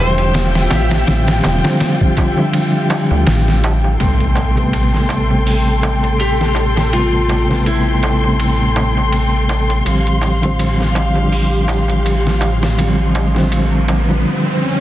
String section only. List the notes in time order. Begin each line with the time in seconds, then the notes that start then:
Already playing: F4 G4 G5
3.99 A4 G5 C6
9.85 G4 F5